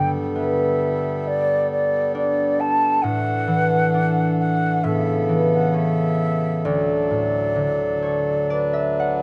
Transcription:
Already playing: harp G2 D3, harmonium G3 B3 A4
0.35 harp B3, flute E5
1.27 flute D5
1.71 flute D5
2.15 harp D4, flute D5
2.60 flute A5
3.02 harp A2, harmonium E3 D4, flute F#5
3.48 harp E3
3.94 harp D4
4.38 flute F#5
4.83 harp A2, harmonium C#3 B3 A4, flute E5
5.29 harp E3
5.53 flute F#5
5.74 harp C#4, flute E5
6.65 harp D2, harmonium F#3 D4, flute D5
7.11 harp A2
7.56 harp D3
8.03 harp C#5
8.50 harmonium B4, harp D5
8.73 harp E5
9.00 harp F#5

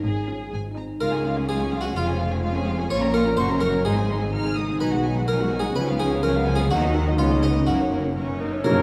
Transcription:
Already playing: harp C#4
0.03 double bass section G#1, cello section G#2, harp G#2, violin section G#4
0.28 viola section C#4 F4, harp F4 G#4, violin section G#5
0.52 double bass section G#1, cello section G#2, harp G#2, violin section G#5
0.76 viola section C4 D#4, harp D#4 G#4, violin section A#5
1.00 double bass section C#2, cello section C#2, harp C#3, viola section G#3, violin section F4 F5, harpsichord A#4
1.12 viola section C#4, violin section G#4 G#5
1.17 harp F4
1.24 viola section G#3, violin section F4 F5
1.33 harp G#3, viola section C#4, violin section G#4 G#5
1.48 harp F#3, viola section G#3, violin section F4 F5, harpsichord G#4
1.60 viola section C#4, violin section G#4 G#5
1.72 viola section G#3, violin section F4 F5
1.80 viola section C#4, harp F4, harpsichord F#4, violin section G#4 G#5
1.95 double bass section F1, cello section F2, harp F3, viola section G#3, violin section F4 F5, harpsichord F4
2.07 viola section C#4, violin section G#4 G#5
2.12 harp G#4
2.19 viola section G#3, violin section F4 F5
2.28 harp C#4, viola section C#4, violin section G#4
2.32 violin section G#5
2.42 viola section G#3, harp C4, violin section F4 F5
2.54 viola section C#4, violin section G#4 G#5
2.59 harp C#4
2.66 viola section G#3, violin section F4 F5
2.75 viola section C#4, harp G#4, violin section G#4 G#5
2.90 double bass section A#1, harp A#2, cello section A#2, viola section A#3, violin section F4 C#6, harpsichord C#5
3.01 viola section C#4, violin section A#4 A#5
3.06 harp C#4
3.13 viola section A#3, violin section F4 C#6, harpsichord A#4
3.22 viola section C#4, harp F4 A#4, violin section A#5
3.27 violin section A#4
3.37 double bass section F#1, harp F#2, cello section F#2, viola section A#3, violin section F#4 C#6, harpsichord C5
3.49 viola section C#4, violin section A#4 A#5
3.54 harp C#4
3.60 viola section A#3, violin section F#4 C#6, harpsichord A#4
3.69 viola section C#4, harp F#4 C#5, violin section A#4 A#5
3.85 double bass section G#1, cello section G#2, harp G#2, viola section G#3, violin section D#4 C6, harpsichord G#4
3.97 viola section C4, violin section G#4 G#5
4.01 harp D#4
4.08 viola section G#3, violin section D#4 C6
4.17 harp D#3, viola section C4, violin section G#4 G#5
4.32 harp C#3, viola section G#3, violin section D#4 F6
4.45 viola section C4, violin section G#4
4.49 harp D#3
4.56 viola section G#3, violin section D#4 D#6
4.65 harp D#4, violin section G#4
4.69 viola section C4
4.81 double bass section B1, cello section B2, harp B2, viola section F#3, violin section D#4 G#5, harpsichord B4
4.93 viola section G#3, violin section F#4 F#5
4.97 harp D#4
5.05 viola section F#3, violin section D#4 G#5
5.13 harp F#3, viola section G#3, violin section F#5
5.18 violin section F#4
5.28 harp F3, viola section F#3, violin section D#4 G#5, harpsichord A#4
5.40 viola section G#3, violin section F#4 F#5
5.45 harp F#3
5.52 viola section F#3, violin section D#4 G#5
5.60 harp D#4, harpsichord G#4
5.64 viola section G#3, violin section F#4 F#5
5.76 double bass section C#2, cello section C#3, harp C#3, viola section F3, violin section C#4 G#5, harpsichord B4
5.88 viola section G#3, violin section B3 F5
5.92 harp F4
6.00 viola section F3, violin section C#4 G#5, harpsichord G#4
6.08 harp G#3, violin section F5
6.12 viola section G#3, violin section B3
6.23 viola section F3, harp F#3, violin section C#4 G#5, harpsichord A#4
6.35 viola section G#3, violin section B3 F5
6.39 harp G#3
6.47 viola section F3, violin section C#4 G#5
6.55 violin section B3 F5, harp F4, harpsichord G#4
6.59 viola section G#3
6.71 double bass section D#2, harp D#3, viola section D#3, cello section D#3, violin section A#3 F#5, harpsichord F#4
6.83 viola section F#3, violin section D#4 D#5, harp D#4
6.94 viola section D#3, violin section A#3 F#5
7.02 harp D#4 F#4
7.06 viola section F#3, violin section D#4 D#5
7.18 double bass section C#2, harp C#3, cello section C#3, viola section G#3, violin section B3 C#5, harpsichord F4
7.30 viola section A#3, violin section C#4 D#5
7.35 harp B3
7.43 viola section G#3, violin section B3 C#5, harpsichord D#4
7.50 harp D#4 A#4
7.55 viola section A#3, violin section C#4 D#5
7.67 double bass section F#1, harp F#2, cello section F#2, violin section A#3 A#4, viola section C#4, harpsichord F#4
7.79 viola section A#3, violin section C#4 C#5
7.83 harp C#4
7.91 violin section A#3 A#4, viola section C#4
7.99 harp C#3, violin section C#4
8.05 viola section A#3, violin section C#5
8.15 harp B2, violin section A#3 A#4, viola section C#4
8.27 violin section C#4 C#5
8.32 harp C#3
8.40 violin section A#3 A#4, viola section D#4
8.46 harp F#2 C#4
8.51 harp A#3, violin section C#4 C#5
8.55 harp C#4
8.60 harp C#5
8.64 double bass section F#2, viola section C#3, cello section A#3, oboe A#4, flute section A#4, harpsichord A#4, clarinet C#5, tam-tam

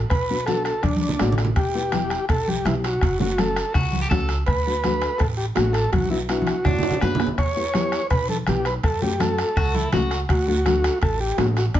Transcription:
0.10 upright bass B1, transistor combo organ B4, bombo low, bombo rim, high timbale, long guiro
0.30 nylon-string guitar B3 D4 F#4
0.46 nylon-string guitar B3 D4 F#4, transistor combo organ A4, bombo rim, high conga, high timbale, short guiro
0.64 transistor combo organ A4, bombo rim, high timbale, short guiro
0.83 upright bass D2, transistor combo organ D4, bombo low, bombo rim, high conga, high timbale, long guiro
0.96 high conga
1.09 low conga
1.19 upright bass A1, nylon-string guitar A3 D4 F#4, bombo rim, high timbale, low timbale, short guiro
1.32 low conga
1.38 bombo rim, high timbale, short guiro
1.45 low conga
1.56 upright bass E1, transistor combo organ G4, bombo low, bombo rim, high timbale, long guiro
1.75 nylon-string guitar B3 E4 G4
1.92 nylon-string guitar B3 E4 G4, bombo rim, high conga, high timbale, short guiro
2.10 bombo rim, high timbale, short guiro
2.29 upright bass B1, transistor combo organ A4, bombo low, bombo rim, high timbale, long guiro
2.48 transistor combo organ G4, high conga
2.65 upright bass B1, nylon-string guitar B3 E4 G4, transistor combo organ E4, bombo rim, high conga, high timbale, short guiro
2.84 transistor combo organ F#4, bombo rim, high timbale, short guiro
3.01 upright bass F#1, bombo low, bombo rim, high timbale, long guiro
3.19 nylon-string guitar A3 C#4 F#4, transistor combo organ F#4, low conga
3.38 nylon-string guitar A3 C#4 F#4, transistor combo organ A4, bombo rim, high conga, high timbale, short guiro
3.56 bombo rim, high timbale, short guiro
3.74 upright bass C#2, clean electric guitar F#4, bombo low, bombo rim, high timbale, long guiro
3.92 high conga
4.02 clean electric guitar G4
4.10 upright bass C#2, nylon-string guitar A3 C#4 F#4, clean electric guitar A4, bombo low, bombo rim, high conga, low conga, high timbale, short guiro
4.29 bombo rim, high timbale, short guiro
4.46 upright bass D2, transistor combo organ B4, bombo low, bombo rim, high timbale, long guiro
4.66 nylon-string guitar A3 D4 F#4
4.84 nylon-string guitar A3 D4 F#4, bombo rim, high conga, high timbale, short guiro
5.02 bombo rim, high timbale, short guiro
5.18 upright bass A1, transistor combo organ A4, bombo low, bombo rim, high timbale, long guiro
5.37 transistor combo organ G4
5.55 upright bass A1, nylon-string guitar A3 D4 F#4, transistor combo organ F#4, bombo rim, high conga, high timbale, low timbale, short guiro
5.73 transistor combo organ A4, bombo rim, high timbale, short guiro
5.92 upright bass B1, transistor combo organ F#4, bombo low, bombo rim, high conga, high timbale, long guiro
6.05 high conga
6.11 nylon-string guitar B3 D4 F#4, transistor combo organ E4
6.29 nylon-string guitar B3 D4 E4, transistor combo organ F#4, bombo rim, high timbale, short guiro
6.42 high conga
6.47 bombo rim, high timbale, short guiro
6.65 upright bass F#2, clean electric guitar D4, bombo low, bombo rim, low conga, high timbale, long guiro
6.79 low conga
6.83 high timbale
6.91 low conga
7.01 upright bass F#2, nylon-string guitar B3 D4 F#4, clean electric guitar B4, bombo rim, low conga, low timbale, short guiro
7.15 low conga
7.20 bombo rim, low timbale, short guiro
7.27 low conga
7.38 upright bass E2, transistor combo organ C#5, bombo low, bombo rim, high timbale, long guiro
7.56 nylon-string guitar B3 E4 G4
7.74 nylon-string guitar B3 E4 G4, bombo rim, high conga, high timbale, short guiro
7.92 bombo rim, high timbale, short guiro
8.10 upright bass B1, transistor combo organ B4, bombo low, bombo rim, high timbale, long guiro
8.29 transistor combo organ A4, high conga
8.47 upright bass B1, nylon-string guitar B3 E4 G4, transistor combo organ G4, bombo rim, high conga, high timbale, short guiro
8.65 transistor combo organ B4, bombo rim, high timbale, short guiro
8.83 upright bass F#2, transistor combo organ A4, bombo low, bombo rim, high timbale, long guiro
9.02 nylon-string guitar A3 C#4 F#4, transistor combo organ G4, low conga
9.19 nylon-string guitar A3 C#4 F#4, transistor combo organ A4, bombo rim, high conga, high timbale, short guiro
9.38 bombo rim, high timbale, short guiro
9.56 upright bass C#2, clean electric guitar F#4, bombo low, bombo rim, high timbale, long guiro
9.74 clean electric guitar E4, high conga
9.92 upright bass C#2, nylon-string guitar A3 C#4 F#4, clean electric guitar F#4, bombo rim, high conga, low conga, high timbale, short guiro
10.11 bombo rim, high timbale, short guiro
10.29 upright bass D2, transistor combo organ F#4, bombo low, bombo rim, high timbale, long guiro
10.47 nylon-string guitar A3 D4 F#4
10.65 nylon-string guitar A3 D4 F#4, bombo rim, high conga, high timbale, short guiro
10.84 bombo rim, high timbale, short guiro
11.01 upright bass A1, transistor combo organ A4, bombo low, bombo rim, high timbale, long guiro
11.20 transistor combo organ G4
11.38 upright bass A1, nylon-string guitar A3 D4 F#4, transistor combo organ F#4, bombo rim, high conga, high timbale, low timbale, short guiro
11.57 transistor combo organ F#4, bombo rim, high timbale, short guiro
11.74 upright bass B1, transistor combo organ D4, bombo low, bombo rim, high timbale, long guiro

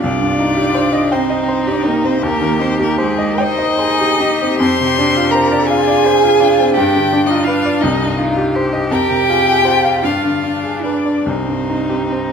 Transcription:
0.01 grand piano C2, cello D4, violin F4 D5
0.21 grand piano G2
0.39 grand piano D#4
0.57 grand piano G4
0.74 grand piano C5
0.93 grand piano D#5
1.12 cello C4, violin D#4 C5, grand piano G5
1.30 grand piano D#5
1.48 grand piano C5
1.67 cello D4, grand piano G4, violin D5
1.84 cello A#3, grand piano D#4, violin A#4
2.04 cello C4, grand piano C4, violin C5
2.23 grand piano D#2, cello A#3, violin G4 A#4
2.41 grand piano D#3
2.59 cello C4, grand piano D#4, violin C5
2.79 cello A#3, grand piano G4, violin A#4
2.98 cello G#3, violin G#4, grand piano C5
3.19 grand piano D#5
3.38 cello D#4, violin C5 D#5, grand piano G5
3.58 grand piano D#5
3.79 violin G#4, grand piano C5
4.00 grand piano G4
4.20 grand piano D#4, violin G4
4.42 grand piano C4
4.59 grand piano F2, cello C5, violin C6
4.80 grand piano C3
4.98 grand piano D4
5.17 grand piano F4
5.31 cello A#4, grand piano C5, violin A#5
5.52 grand piano D5
5.66 violin F4 G#5, cello G#4
5.70 grand piano F5
5.87 grand piano D5
6.04 violin G#4, grand piano C5
6.23 grand piano F4
6.40 grand piano D4, violin F4
6.59 grand piano C4
6.74 grand piano G2, violin D4 G5, cello G4
6.96 grand piano D3
7.13 grand piano D4
7.27 cello D#4, grand piano F4, violin D#5
7.44 cello F4, grand piano B4, violin F5
7.66 grand piano D5
7.81 grand piano C2, violin D#4 D#5, cello D#4
8.02 grand piano G2
8.18 grand piano D#4, violin F4
8.37 grand piano G4
8.55 violin G4, grand piano C5
8.73 grand piano D#5
8.90 grand piano F2, cello G4, violin A#4 G5
9.10 grand piano C3
9.29 grand piano F4, violin G#4
9.48 grand piano G#4
9.65 violin F4, grand piano C5
9.84 grand piano F5
10.03 grand piano G2, violin D4 F5, cello F4
10.23 grand piano D3
10.44 grand piano D4
10.63 grand piano G#4
10.83 cello D4, grand piano B4, violin D5
11.05 grand piano D5
11.26 grand piano C2, cello C4, violin D#4 C5
11.47 grand piano G2
11.70 grand piano D#4
11.89 grand piano G4
12.12 grand piano C5

